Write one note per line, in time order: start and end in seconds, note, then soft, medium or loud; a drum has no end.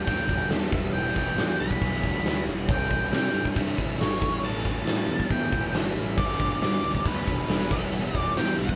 0.07 0.28 D2 loud
0.07 0.50 G2 loud
0.07 0.49 D3 medium
0.07 0.30 G3 loud
0.07 0.27 B3 loud
0.07 0.27 D4 loud
0.07 0.50 G5 medium
0.07 kick loud
0.07 crash medium
0.19 snare soft
0.28 0.49 E1 medium
0.28 0.51 G3 medium
0.28 0.51 B3 medium
0.28 0.51 D4 medium
0.28 kick medium
0.28 crash medium
0.50 0.71 D#2 loud
0.50 0.71 D3 medium
0.50 0.73 G3 medium
0.50 0.72 B3 medium
0.50 0.72 D4 loud
0.50 0.93 E5 loud
0.50 snare loud
0.50 crash medium
0.72 0.92 E1 loud
0.72 0.94 E3 medium
0.72 0.94 G3 medium
0.72 0.95 B3 medium
0.72 0.96 E4 medium
0.72 kick loud
0.72 crash medium
0.93 1.15 E1 loud
0.93 1.37 E3 medium
0.93 1.18 G3 medium
0.93 1.16 B3 loud
0.93 1.16 E4 loud
0.93 1.14 G5 loud
0.93 crash medium
1.16 1.36 E1 medium
1.16 1.38 G3 medium
1.16 1.38 B3 medium
1.16 1.40 E4 medium
1.16 1.61 G5 loud
1.16 kick medium
1.16 crash medium
1.38 1.58 E2 loud
1.38 1.81 E3 medium
1.38 1.82 G3 medium
1.38 1.82 B3 medium
1.38 1.83 E4 medium
1.38 snare loud
1.38 crash medium
1.50 snare soft
1.59 1.80 B1 medium
1.59 2.43 B5 loud
1.59 crash medium
1.71 kick medium
1.81 2.02 B1 loud
1.81 2.25 E3 medium
1.81 2.05 G3 medium
1.81 2.04 B3 loud
1.81 2.04 E4 loud
1.81 kick medium
1.81 crash medium
1.93 snare soft
2.03 2.23 D2 medium
2.03 2.25 G3 medium
2.03 2.26 B3 medium
2.03 2.27 E4 medium
2.03 kick medium
2.03 crash medium
2.24 2.45 D2 medium
2.24 2.68 E3 medium
2.24 2.47 G3 medium
2.24 2.46 B3 medium
2.24 2.46 E4 medium
2.24 snare loud
2.24 crash medium
2.46 2.67 E1 loud
2.46 2.68 G3 medium
2.46 2.68 B3 medium
2.46 2.70 E4 medium
2.46 crash medium
2.68 2.89 C2 loud
2.68 3.12 C3 loud
2.68 3.10 E3 loud
2.68 2.91 G3 loud
2.68 2.90 C4 medium
2.68 2.90 E4 loud
2.68 3.13 G5 loud
2.68 kick loud
2.68 crash loud
2.90 3.11 C2 loud
2.90 3.10 G3 medium
2.90 3.11 C4 medium
2.90 3.12 E4 medium
2.90 kick medium
2.90 crash medium
3.11 3.33 C3 loud
3.11 3.53 E3 medium
3.11 3.54 G3 medium
3.11 3.54 C4 medium
3.11 3.55 E4 medium
3.11 3.58 G5 medium
3.11 snare loud
3.11 crash loud
3.24 snare soft
3.34 3.54 G2 medium
3.34 crash medium
3.45 kick medium
3.54 3.76 G2 loud
3.54 3.99 C3 medium
3.54 3.98 E3 loud
3.54 3.78 G3 loud
3.54 3.77 C4 loud
3.54 3.76 E4 loud
3.54 kick loud
3.54 crash medium
3.58 3.98 E5 loud
3.69 snare soft
3.77 3.98 A1 medium
3.77 3.98 G3 medium
3.77 3.99 C4 medium
3.77 3.99 E4 medium
3.77 kick medium
3.77 crash medium
3.99 4.19 G#1 medium
3.99 4.20 E3 medium
3.99 4.20 G3 medium
3.99 4.20 C4 medium
3.99 4.20 E4 medium
3.99 4.41 C#5 loud
3.99 snare loud
3.99 crash medium
4.21 4.41 A1 medium
4.21 4.42 A2 medium
4.21 4.43 E3 medium
4.21 4.43 A3 medium
4.21 4.44 C#4 medium
4.21 4.45 E4 medium
4.21 kick loud
4.21 crash medium
4.42 4.63 A1 loud
4.42 4.87 A2 loud
4.42 4.86 E3 loud
4.42 4.66 A3 loud
4.42 4.65 C#4 loud
4.42 4.65 E4 loud
4.42 4.84 A5 loud
4.42 crash loud
4.65 4.84 A1 medium
4.65 4.86 A3 medium
4.65 4.87 C#4 medium
4.65 4.88 E4 medium
4.65 kick medium
4.65 crash medium
4.85 5.06 A2 loud
4.85 5.30 E3 medium
4.85 5.30 A3 medium
4.85 5.31 C#4 medium
4.85 5.32 E4 medium
4.85 5.32 A5 medium
4.85 snare loud
4.85 crash medium
4.99 snare soft
5.08 5.28 E2 medium
5.08 crash medium
5.20 kick medium
5.30 5.51 E2 loud
5.30 5.74 A2 loud
5.30 5.72 E3 loud
5.30 5.53 A3 loud
5.30 5.52 C#4 loud
5.30 5.51 E4 loud
5.30 5.76 G5 loud
5.30 kick loud
5.30 crash medium
5.43 snare soft
5.52 5.72 G1 medium
5.52 5.73 A3 medium
5.52 5.73 C#4 medium
5.52 5.74 E4 medium
5.52 kick medium
5.52 crash medium
5.73 5.93 G1 loud
5.73 6.16 E3 medium
5.73 5.97 A3 medium
5.73 5.96 C#4 loud
5.73 5.95 E4 loud
5.73 6.17 E5 medium
5.73 snare loud
5.73 crash medium
5.95 6.16 A1 loud
5.95 6.17 A3 medium
5.95 6.17 C#4 medium
5.95 6.16 E4 medium
5.95 crash medium
6.17 6.38 G1 loud
6.17 6.62 G2 medium
6.17 6.61 D3 medium
6.17 6.41 G3 loud
6.17 6.40 B3 loud
6.17 6.39 D4 loud
6.17 6.61 D5 loud
6.17 kick loud
6.17 crash loud
6.40 6.60 G1 medium
6.40 6.63 G3 medium
6.40 6.63 B3 medium
6.40 6.63 D4 medium
6.40 kick medium
6.40 crash medium
6.61 6.81 G2 loud
6.61 7.04 D3 medium
6.61 7.05 G3 medium
6.61 7.06 B3 medium
6.61 7.06 D4 medium
6.61 7.02 D5 medium
6.61 snare loud
6.61 crash medium
6.73 snare soft
6.83 7.03 D2 medium
6.83 crash medium
6.95 kick medium
7.05 7.25 D2 loud
7.05 7.48 G2 loud
7.05 7.48 D3 loud
7.05 7.28 G3 loud
7.05 7.28 B3 loud
7.05 7.26 D4 loud
7.05 7.72 B4 medium
7.05 kick loud
7.05 crash medium
7.18 snare soft
7.27 7.47 E1 medium
7.27 7.49 G3 medium
7.27 7.49 B3 medium
7.27 7.50 D4 medium
7.27 kick medium
7.27 crash medium
7.49 7.71 E1 loud
7.49 7.69 D3 medium
7.49 7.70 G3 medium
7.49 7.70 B3 loud
7.49 7.69 D4 medium
7.49 snare loud
7.49 crash medium
7.70 7.91 E1 loud
7.70 7.91 E3 medium
7.70 7.92 G3 medium
7.70 7.92 B3 medium
7.70 7.93 E4 medium
7.70 8.18 E5 medium
7.70 kick loud
7.70 crash loud
7.92 8.12 E1 loud
7.92 8.35 E3 medium
7.92 8.16 G3 loud
7.92 8.14 B3 loud
7.92 8.13 E4 loud
7.92 crash medium
8.14 8.34 E1 medium
8.14 8.36 G3 medium
8.14 8.36 B3 medium
8.14 8.38 E4 medium
8.14 8.32 D5 medium
8.14 kick medium
8.14 crash medium
8.36 8.56 E2 loud
8.36 8.76 E3 medium
8.36 8.76 G3 medium
8.36 8.76 B3 medium
8.36 8.76 E4 medium
8.36 8.56 G5 medium
8.36 snare loud
8.36 crash medium
8.48 snare soft
8.58 8.76 B1 medium
8.58 8.76 F#5 loud
8.58 crash medium
8.69 kick medium